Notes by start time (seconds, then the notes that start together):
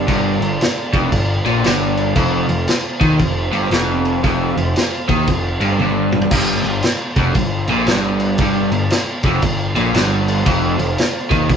Already playing: D4 G4 A#4 D5
0.08 G1 G2, kick, crash
0.41 G1 G2, crash
0.61 snare, crash
0.93 F1 F2, kick, crash
1.12 G1 G2, kick, crash
1.45 A#1 A#2, crash
1.64 G1 G2, snare, crash
1.97 crash
2.14 F1 F2 C4 F4 C5 F5, kick, crash
2.49 F1 F2, crash
2.68 snare, crash
3.01 D#2 D#3, kick, crash
3.19 F1 F2, kick, crash
3.53 G1 G2, crash
3.71 F1 F2, snare, crash
4.05 crash
4.24 F1 F2, kick, crash
4.57 F1 F2, crash
4.76 snare, crash
5.09 D#2 D#3, kick, crash
5.27 F1 F2, kick, crash
5.61 G1 G2, crash
5.79 G1 G2, high tom
6.12 mid tom
6.22 floor tom
6.31 G1 G2, kick, crash
6.64 G1 G2, crash
6.83 snare, crash
7.16 F1 F2, kick, crash
7.35 G1 G2, kick, crash
7.68 A#1 A#2, crash
7.87 G1 G2, snare, crash
8.20 crash
8.38 G1 G2, kick, crash
8.72 G1 G2, crash
8.90 snare, crash
9.23 F1 F2, kick, crash
9.42 G1 G2, kick, crash
9.75 A#1 A#2, crash
9.93 G1 G2, snare, crash
10.28 crash
10.45 F1 F2 C4 F4 C5 F5, kick, crash
10.79 F1 F2, crash
10.98 snare, crash
11.30 D#2 D#3, kick, crash
11.49 F1 F2, kick, crash